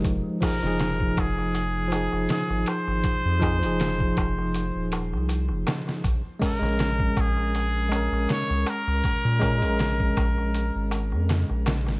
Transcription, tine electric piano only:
X:1
M:4/4
L:1/16
Q:"Swing 16ths" 1/4=80
K:Fm
V:1 name="Tine electric piano"
[F,A,E]2 [F,EA] [F,EA]6- [F,EA] [F,EA]6- | [F,EA]2 [F,EA] [F,EA]12- [F,EA] | z2 [A,DB] [A,DB]6- [A,DB] [A,DB]6- | [A,DB]2 [A,DB] [A,DB]12- [A,DB] |]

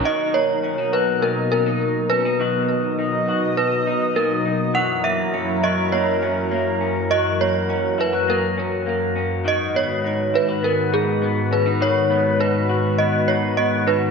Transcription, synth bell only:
X:1
M:4/4
L:1/16
Q:1/4=102
K:B
V:1 name="Synth bell"
d2 c4 B2 A2 A4 B2- | B8 B4 A3 z | f2 e4 d2 c6 z2 | d2 c4 B2 A4 z4 |
d2 c4 B2 A2 G4 B2 | c4 B4 d2 c2 d2 B2 |]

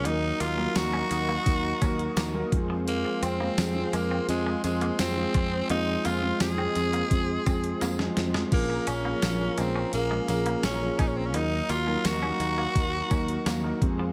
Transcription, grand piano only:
X:1
M:4/4
L:1/16
Q:1/4=85
K:Ebdor
V:1 name="Grand piano"
[G,B,EB]2 z [G,B,EB] z [G,B,EB]2 z [G,B,EB] z [G,B,EB]2 z [G,B,EB] [F,A,CA]2- | [F,A,CA]2 z [F,A,CA] z [F,A,CA]2 z [F,A,CA] z [F,A,CA]2 z [F,A,CA]2 z | [F,A,CA]2 z [F,A,CA] z [F,A,CA]2 z [F,A,CA] z [F,A,CA]2 z [F,A,CA]2 z | [F,B,DA]2 z [F,B,DA] z [F,B,DB]2 z [F,B,DA] z [F,B,DA]2 z [F,B,DA]2 z |
[G,B,EB]2 z [G,B,EB] z [G,B,EB]2 z [G,B,EB] z [G,B,EB]2 z [G,B,EB] [F,A,C=GA]2 |]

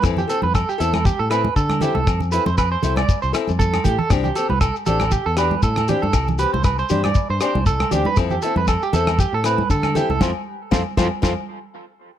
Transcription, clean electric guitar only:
X:1
M:4/4
L:1/16
Q:"Swing 16ths" 1/4=118
K:Flyd
V:1 name="Clean electric guitar"
z G A B A G A2 G A B2 A2 G A- | A z B c B c2 d2 c z2 A2 G A | z G A B A z A2 G A B2 A2 G A- | A z B c B c2 d2 c c2 A2 G B |
z G A B A G A2 G A B2 A2 G A | [FAc]2 z2 [FAc]2 [FAc]2 [FAc]2 z6 |]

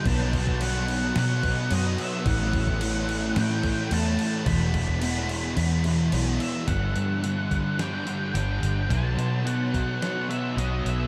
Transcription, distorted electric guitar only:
X:1
M:4/4
L:1/8
Q:1/4=108
K:G
V:1 name="Distorted electric guitar" clef=bass
[B,,F,B,]2 [B,,F,B,]2 [B,,F,B,] [F,B,] [B,,F,B,]2 | [A,,E,A,]2 [A,,E,A,]2 [A,,E,A,] [E,A,] [A,,E,A,]2 | [E,,B,,E,]2 [E,,B,,E,]2 [E,,B,,E,] [B,,E,] [E,,B,,E,]2 | [G,,D,G,]2 [G,,D,G,]2 [G,,D,G,] [D,G,] [G,,D,G,]2 |
[B,,F,B,]2 [B,,F,B,]2 [B,,F,B,] [F,B,] [B,,F,B,]2 |]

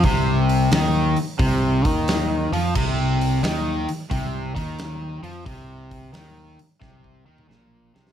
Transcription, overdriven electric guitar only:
X:1
M:4/4
L:1/8
Q:"Swing" 1/4=88
K:Bblyd
V:1 name="Overdriven electric guitar" clef=bass
C,2 _E, z C, E,2 F, | C,2 _E, z C, E,2 F, | C,2 _E, z C, E, B,, C, |]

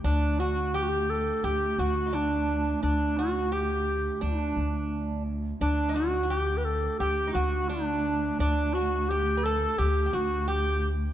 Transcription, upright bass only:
X:1
M:4/4
L:1/8
Q:1/4=86
K:none
V:1 name="Upright bass" clef=bass
D,,4 D,, D,,3 | D,,4 D,, D,,3 | D,,4 D,, D,,3 | D,,4 D,, D,,3 |]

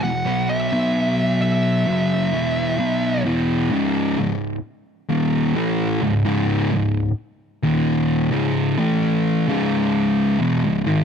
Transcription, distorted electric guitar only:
X:1
M:4/4
L:1/16
Q:1/4=65
K:E
V:1 name="Distorted electric guitar" clef=bass
[E,,B,,] [B,,F,B,]2 [B,,F,B,]4- [B,,F,B,] [F,,C,F,]2 [E,,B,,E,]2 [B,,F,B,]2 [E,,B,,E,]2 | [K:C#m] [C,,G,,C,]2 [C,,G,,]2 z2 [D,,^A,,D,]2 [=A,,E,A,]2 [C,,G,,] [C,,G,,C,]2 [C,,G,,]2 z | z [D,,^A,,D,]3 [C,,G,,C,]2 [=A,,E,A,]3 [C,,G,,C,]4 [E,,B,,] [C,,G,,] [G,,D,] |]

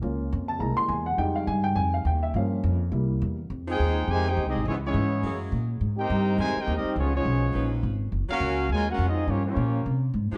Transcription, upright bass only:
X:1
M:4/4
L:1/8
Q:"Swing" 1/4=208
K:Fm
V:1 name="Upright bass" clef=bass
D,,2 F,,2 C,, z =E,,2 | F,,2 G,,2 F,,2 E,,2 | G,,2 F,,2 C,,2 =E,,2 | F,,2 E,,2 F,,2 (3E,, C,, A,,, |
D,,2 A,,2 _G,,2 B,,2 | A,,2 G,,2 F,, z E,, z | D,,2 _C,,2 B,,,2 A,,,2 | _G,,, z D,,2 E,,2 F,,2 |
G,,2 B,,2 C,2 A,, z |]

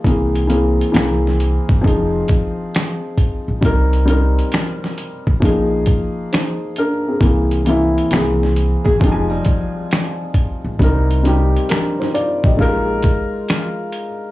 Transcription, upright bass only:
X:1
M:4/4
L:1/16
Q:"Swing 16ths" 1/4=67
K:Cm
V:1 name="Upright bass" clef=bass
C,,4 C,,3 ^G,,, F,,,2 z4 z B,,, | C,,4 z3 B,,, B,,,2 z6 | C,,4 C,,3 ^G,,, F,,,2 z4 z B,,, | C,,4 z3 B,,, B,,,2 z6 |]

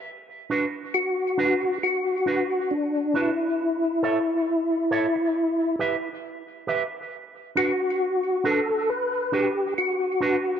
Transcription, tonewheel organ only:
X:1
M:4/4
L:1/8
Q:"Swing 16ths" 1/4=68
K:Bm
V:1 name="Tonewheel organ"
z2 F2 F2 D E- | E4- E z3 | z F2 A B G F2 |]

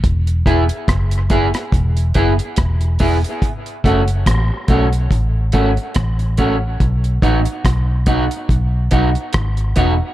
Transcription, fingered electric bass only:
X:1
M:4/4
L:1/16
Q:"Swing 16ths" 1/4=71
K:F#dor
V:1 name="Fingered electric bass" clef=bass
E,,,2 E,,, z F,,,3 z E,,,2 F,,, z E,,,2 E,,, z | z2 F,,,2 A,,, z B,,,2 A,,,2 G,,, z A,,,4 | B,,,2 A,,, z B,,,3 z B,,,2 B,,, z G,,,2 E,,, z |]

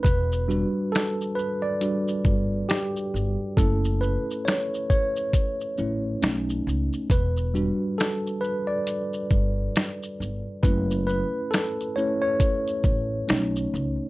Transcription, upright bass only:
X:1
M:4/4
L:1/16
Q:"Swing 16ths" 1/4=68
K:Edor
V:1 name="Upright bass" clef=bass
E,,,3 z6 z G,,,2 z2 G,,, z | F,,,3 z6 z A,,,2 B,,,2 C,, z | E,,,3 z6 z G,,,2 z2 G,,, z | F,,,3 z6 z A,,,2 B,,,2 C,, z |]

